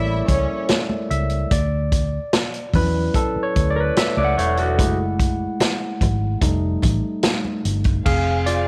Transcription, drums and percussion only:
0.28 kick, closed hi-hat, low conga
0.69 snare, closed hi-hat, high conga
0.90 high conga
1.11 closed hi-hat
1.30 closed hi-hat
1.51 kick, closed hi-hat
1.92 kick, closed hi-hat
2.33 snare, closed hi-hat, high conga
2.54 closed hi-hat
2.74 kick, open hi-hat, muted conga, low conga
3.14 kick, closed hi-hat, muted conga
3.56 kick, closed hi-hat
3.96 snare, closed hi-hat, high conga
4.17 high conga
4.39 closed hi-hat
4.57 closed hi-hat
4.79 kick, closed hi-hat
5.20 kick, closed hi-hat
5.60 snare, closed hi-hat, high conga
6.01 kick, closed hi-hat, muted conga, low conga
6.41 kick, closed hi-hat, muted conga
6.82 kick, closed hi-hat, low conga
7.23 snare, closed hi-hat, high conga
7.45 high conga
7.65 closed hi-hat
7.84 kick, closed hi-hat
8.06 kick, crash
8.46 closed hi-hat, muted conga

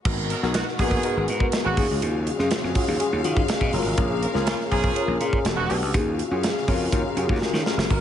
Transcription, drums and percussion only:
0.05 kick, crash
0.30 closed hi-hat
0.43 snare
0.54 snare, closed hi-hat
0.68 snare
0.79 kick, open hi-hat
0.91 kick
1.03 closed hi-hat
1.28 closed hi-hat
1.40 kick
1.52 snare, closed hi-hat
1.77 kick, open hi-hat
2.02 closed hi-hat
2.27 closed hi-hat
2.39 snare
2.51 snare, closed hi-hat
2.65 snare
2.75 kick, open hi-hat
3.00 closed hi-hat
3.24 closed hi-hat
3.37 kick
3.48 snare, closed hi-hat
3.61 kick
3.73 open hi-hat
3.98 kick, closed hi-hat
4.23 closed hi-hat
4.36 snare
4.47 snare, closed hi-hat
4.60 snare
4.72 kick, open hi-hat
4.84 kick
4.96 closed hi-hat
5.21 closed hi-hat
5.33 kick
5.45 snare, closed hi-hat
5.70 open hi-hat
5.94 kick, closed hi-hat
6.19 closed hi-hat
6.43 snare, closed hi-hat
6.57 snare
6.68 kick, open hi-hat
6.92 kick, closed hi-hat
7.17 closed hi-hat
7.29 kick
7.42 snare
7.54 snare
7.66 snare
7.79 snare
7.90 kick, splash

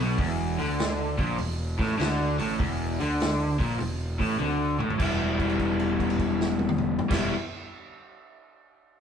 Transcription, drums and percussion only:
0.18 kick, open hi-hat
0.59 open hi-hat
0.78 snare, open hi-hat
1.18 kick, open hi-hat
1.38 open hi-hat
1.79 kick, snare, open hi-hat
1.99 snare, open hi-hat
2.39 open hi-hat
2.60 kick, open hi-hat
3.00 open hi-hat
3.20 snare, open hi-hat
3.60 kick, open hi-hat
3.80 open hi-hat
4.20 kick, open hi-hat
4.41 high tom
4.80 mid tom
4.90 floor tom
5.00 kick, crash
5.40 kick, crash
5.50 crash
5.59 kick, crash
5.79 crash
5.99 kick, crash
6.10 crash
6.19 kick, crash
6.41 snare
6.59 high tom
6.69 mid tom
6.78 mid tom
6.99 floor tom
7.11 kick, snare, crash

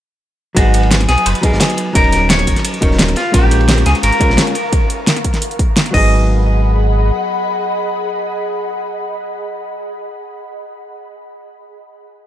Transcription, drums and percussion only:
0.56 kick, closed hi-hat, ride
0.74 closed hi-hat, ride
0.83 ride
0.91 snare, closed hi-hat, ride
1.00 snare, closed hi-hat
1.09 snare, closed hi-hat, ride
1.18 closed hi-hat, ride
1.26 closed hi-hat, ride
1.35 closed hi-hat
1.43 kick, closed hi-hat, ride
1.52 snare
1.60 snare, closed hi-hat, ride
1.70 snare, closed hi-hat
1.77 closed hi-hat, ride
1.95 kick, closed hi-hat, ride
2.04 ride
2.12 snare, closed hi-hat, ride
2.30 snare, closed hi-hat, ride
2.39 snare, closed hi-hat, ride
2.47 kick, closed hi-hat, ride
2.56 snare, closed hi-hat
2.65 closed hi-hat, ride
2.74 closed hi-hat
2.82 kick, closed hi-hat, ride
2.91 snare
2.99 snare, closed hi-hat, ride
3.08 snare, closed hi-hat, ride
3.16 snare, closed hi-hat, ride
3.34 kick, closed hi-hat, ride
3.51 closed hi-hat, ride
3.61 ride
3.69 snare, closed hi-hat, ride
3.78 snare, closed hi-hat
3.86 snare, closed hi-hat, ride
3.95 closed hi-hat, ride
4.03 closed hi-hat, ride
4.12 closed hi-hat
4.21 kick, closed hi-hat, ride
4.30 snare
4.38 snare, closed hi-hat, ride
4.47 snare, closed hi-hat
4.55 closed hi-hat, ride
4.73 kick, closed hi-hat
4.90 closed hi-hat
5.07 snare, closed hi-hat
5.16 snare, closed hi-hat
5.24 kick, closed hi-hat
5.34 snare, closed hi-hat
5.42 closed hi-hat
5.51 closed hi-hat
5.59 kick, closed hi-hat
5.77 snare, closed hi-hat
5.86 snare, closed hi-hat
5.94 kick, crash

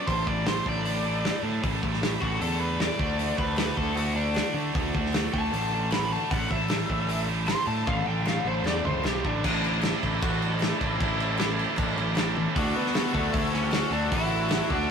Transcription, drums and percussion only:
0.08 kick, open hi-hat
0.27 kick
0.46 snare, open hi-hat
0.66 kick
0.85 open hi-hat
1.25 snare, open hi-hat
1.64 kick, open hi-hat
1.83 kick
1.93 snare
2.03 snare, open hi-hat
2.22 kick
2.42 open hi-hat
2.80 snare, open hi-hat
2.99 kick
3.19 open hi-hat
3.38 kick
3.57 snare, clap, open hi-hat
3.77 kick
3.96 clap, open hi-hat
4.35 snare, clap, open hi-hat
4.75 kick, open hi-hat
4.95 kick
5.05 snare
5.13 snare, clap, open hi-hat
5.34 kick
5.51 clap, open hi-hat
5.91 snare, clap, open hi-hat
6.31 kick, open hi-hat
6.51 kick
6.69 snare, clap, open hi-hat
6.90 kick
7.08 clap, open hi-hat
7.47 snare, clap, open hi-hat
7.87 kick, high tom
8.26 snare, clap
8.65 snare, clap
8.85 mid tom
9.04 snare, clap
9.25 kick
9.44 kick, crash
9.64 crash
9.82 snare, clap, crash
10.03 kick, crash
10.21 kick, clap, crash
10.42 crash
10.60 snare, clap, crash
10.81 kick, crash
11.01 kick, crash
11.20 crash
11.38 snare, clap, crash
11.59 crash
11.77 kick, clap, crash
11.98 crash
12.16 snare, clap, crash
12.37 high tom
12.56 kick, open hi-hat
12.86 snare
12.95 snare, clap, open hi-hat
13.15 kick
13.34 kick, open hi-hat
13.54 snare
13.72 snare, clap, open hi-hat
14.12 kick, open hi-hat
14.50 snare, clap, open hi-hat
14.70 kick

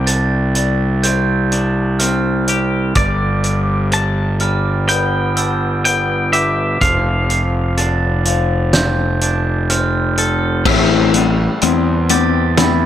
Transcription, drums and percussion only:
0.07 closed hi-hat
0.55 closed hi-hat
1.03 closed hi-hat
1.52 closed hi-hat
1.99 closed hi-hat
2.48 closed hi-hat
2.95 kick, closed hi-hat
3.44 closed hi-hat
3.92 closed hi-hat
4.40 closed hi-hat
4.88 closed hi-hat
5.37 closed hi-hat
5.85 closed hi-hat
6.33 closed hi-hat
6.81 kick, closed hi-hat
7.30 closed hi-hat
7.77 closed hi-hat
8.25 closed hi-hat
8.73 snare, closed hi-hat
9.21 closed hi-hat
9.70 closed hi-hat
10.17 closed hi-hat
10.66 kick, crash
11.14 closed hi-hat
11.61 closed hi-hat
12.09 closed hi-hat
12.57 snare, closed hi-hat

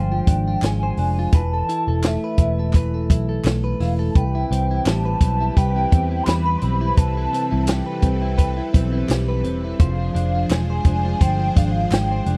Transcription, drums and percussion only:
0.27 kick, closed hi-hat
0.62 snare, clap, closed hi-hat
0.97 open hi-hat
1.32 kick, closed hi-hat
1.69 closed hi-hat
2.02 snare, clap, closed hi-hat
2.38 kick, closed hi-hat
2.73 kick, clap, closed hi-hat
3.10 kick, closed hi-hat
3.45 snare, clap, closed hi-hat
3.80 snare, open hi-hat
4.15 kick, closed hi-hat
4.52 closed hi-hat
4.85 snare, clap, closed hi-hat
5.21 kick, closed hi-hat
5.57 kick, closed hi-hat
5.92 kick, closed hi-hat
6.27 snare, clap, closed hi-hat
6.61 closed hi-hat
6.97 kick, closed hi-hat
7.34 closed hi-hat
7.67 snare, clap, closed hi-hat
8.02 kick, closed hi-hat
8.38 kick, closed hi-hat
8.74 kick, closed hi-hat
9.09 snare, clap, closed hi-hat
9.44 closed hi-hat
9.79 kick, closed hi-hat
10.16 closed hi-hat
10.49 snare, clap, closed hi-hat
10.85 kick, closed hi-hat
11.21 kick, closed hi-hat
11.57 kick, closed hi-hat
11.92 snare, clap, closed hi-hat
12.26 closed hi-hat

